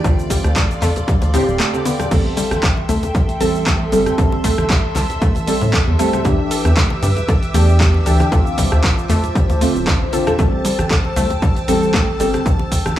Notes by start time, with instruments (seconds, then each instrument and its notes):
Already playing: analog synth pad D5, string machine D5
0.04 analog synth bass D2, synth stab D3 C4 F4, synth arpeggio sound A3, analog synth pad A4 F5 C6, kick, closed hi-hat, cabasa
0.19 cabasa
0.30 synth arpeggio sound G3, kick, open hi-hat, muted conga, cabasa
0.44 analog synth bass D2, cross-stick, closed hi-hat, high conga, cabasa
0.56 synth arpeggio sound A3, kick, clap, closed hi-hat, muted conga, cabasa
0.71 cabasa
0.82 analog synth bass F2, synth arpeggio sound A3, clap, open hi-hat, high conga, cabasa
0.96 closed hi-hat, muted conga, low conga, cabasa
1.08 synth arpeggio sound G3, kick, closed hi-hat, cabasa
1.22 analog synth bass D2, closed hi-hat, muted conga, cabasa
1.34 synth arpeggio sound A2, synth stab D3 C4 G4, open hi-hat, cabasa
1.48 analog synth bass D1, cabasa
1.60 synth arpeggio sound A3, cross-stick, clap, closed hi-hat, muted conga, cabasa
1.74 synth stab D3 C4 G4, high conga, cabasa
1.85 synth arpeggio sound B3, open hi-hat, muted conga, cabasa
2.00 cross-stick, closed hi-hat, high conga, low conga, cabasa
2.11 analog synth bass A1, synth stab G3 C4 A4, synth arpeggio sound A3, string machine E5, analog synth pad E5 G5 C6, kick, closed hi-hat, crash, muted conga, cabasa
2.37 synth arpeggio sound G3, open hi-hat, muted conga, cabasa
2.51 analog synth bass A1, cross-stick, closed hi-hat, high conga, cabasa
2.63 synth arpeggio sound A4, kick, clap, closed hi-hat, cabasa
2.77 muted conga
2.89 analog synth bass C2, synth arpeggio sound A3, open hi-hat, high conga, cabasa
3.03 closed hi-hat, muted conga, low conga, cabasa
3.15 synth arpeggio sound G3, kick, closed hi-hat, cabasa
3.29 closed hi-hat, cabasa
3.40 analog synth bass A1, synth stab G3 C4 A4, synth arpeggio sound A4, open hi-hat, muted conga, low conga, cabasa
3.55 cabasa
3.66 synth arpeggio sound A3, kick, cross-stick, clap, closed hi-hat, muted conga, cabasa
3.92 analog synth bass G1, synth stab G3 C4 A4, synth arpeggio sound G3, open hi-hat, cabasa
4.06 cross-stick, closed hi-hat, muted conga, high conga, cabasa
4.18 analog synth bass A1, synth stab G3 C4 A4, synth arpeggio sound A4, analog synth pad A5, kick, closed hi-hat, cabasa
4.32 muted conga
4.44 synth arpeggio sound A3, kick, open hi-hat, cabasa
4.58 analog synth bass A1, cross-stick, closed hi-hat, high conga, cabasa
4.70 synth arpeggio sound G3, kick, clap, closed hi-hat, muted conga, cabasa
4.95 analog synth bass C2, synth arpeggio sound A4, clap, open hi-hat, muted conga, high conga, cabasa
5.10 closed hi-hat, low conga, cabasa
5.22 synth arpeggio sound A3, kick, closed hi-hat, cabasa
5.35 analog synth bass A1, closed hi-hat, muted conga, cabasa
5.47 synth stab G3 C4 A4, synth arpeggio sound G3, open hi-hat, cabasa
5.61 analog synth bass A2, muted conga, cabasa
5.73 synth arpeggio sound A4, kick, cross-stick, clap, closed hi-hat, cabasa
5.87 analog synth bass E2, high conga
5.99 synth stab G3 C4 A4, synth arpeggio sound A3, open hi-hat, muted conga, cabasa
6.13 cross-stick, closed hi-hat, high conga, low conga, cabasa
6.25 analog synth bass E2, synth stab E3 D4 G4, synth arpeggio sound G3, analog synth pad B4 G5 D6, kick, closed hi-hat, muted conga, cabasa
6.51 synth arpeggio sound A4, open hi-hat, cabasa
6.65 analog synth bass E2, cross-stick, closed hi-hat, muted conga, high conga, cabasa
6.77 synth arpeggio sound A3, kick, clap, closed hi-hat, cabasa
6.90 muted conga
7.03 analog synth bass G2, synth arpeggio sound G3, open hi-hat, high conga, cabasa
7.17 closed hi-hat, low conga, cabasa
7.28 synth arpeggio sound A4, kick, closed hi-hat, muted conga, cabasa
7.43 closed hi-hat, cabasa
7.54 analog synth bass E2, synth stab E3 D4 G4, synth arpeggio sound A3, open hi-hat, muted conga, low conga, cabasa
7.69 cabasa
7.80 synth arpeggio sound G3, kick, cross-stick, clap, closed hi-hat, cabasa
7.94 muted conga
8.06 analog synth bass D2, synth stab E3 D4 G4, synth arpeggio sound A4, open hi-hat, cabasa
8.20 cross-stick, closed hi-hat, muted conga, high conga, cabasa
8.32 analog synth bass D2, synth stab D3 C4 F4, synth arpeggio sound A3, analog synth pad F4 C5 A5, kick, closed hi-hat, cabasa
8.47 cabasa
8.58 synth arpeggio sound G3, kick, open hi-hat, muted conga, cabasa
8.72 analog synth bass D2, cross-stick, closed hi-hat, high conga, cabasa
8.83 synth arpeggio sound A4, kick, clap, closed hi-hat, muted conga, cabasa
8.98 cabasa
9.09 analog synth bass F2, synth arpeggio sound A3, clap, open hi-hat, high conga, cabasa
9.23 closed hi-hat, muted conga, low conga, cabasa
9.35 synth arpeggio sound G3, kick, closed hi-hat, cabasa
9.49 analog synth bass D2, closed hi-hat, muted conga, cabasa
9.61 synth stab D3 C4 F4, synth arpeggio sound A3, open hi-hat, cabasa
9.75 analog synth bass D1, cabasa
9.87 synth arpeggio sound D4, kick, cross-stick, clap, closed hi-hat, muted conga, cabasa
10.01 analog synth bass A1, high conga
10.13 synth stab D3 C4 F4, synth arpeggio sound A4, open hi-hat, muted conga, cabasa
10.27 synth arpeggio sound A4, cross-stick, closed hi-hat, high conga, low conga, cabasa
10.39 analog synth bass A1, synth stab G3 C4 A4, synth arpeggio sound A3, analog synth pad G5 A5 E6, string machine A5, kick, closed hi-hat, muted conga, cabasa
10.65 synth arpeggio sound G3, open hi-hat, muted conga, cabasa
10.79 analog synth bass A1, cross-stick, closed hi-hat, high conga, cabasa
10.91 synth arpeggio sound A4, kick, clap, closed hi-hat, cabasa
11.05 muted conga
11.16 analog synth bass C2, synth arpeggio sound A3, open hi-hat, high conga, cabasa
11.30 closed hi-hat, muted conga, low conga, cabasa
11.42 synth arpeggio sound G3, kick, closed hi-hat, cabasa
11.56 closed hi-hat, cabasa
11.68 analog synth bass A1, synth stab G3 C4 A4, synth arpeggio sound A4, open hi-hat, muted conga, low conga, cabasa
11.83 cabasa
11.94 synth arpeggio sound A3, kick, cross-stick, clap, closed hi-hat, muted conga, cabasa
12.20 analog synth bass G1, synth stab G3 C4 A4, synth arpeggio sound G3, open hi-hat, cabasa
12.33 cross-stick, closed hi-hat, muted conga, high conga, cabasa
12.46 analog synth bass A1, kick, closed hi-hat, cabasa
12.59 muted conga
12.72 kick, open hi-hat, cabasa
12.86 analog synth bass A1, cross-stick, closed hi-hat, high conga, cabasa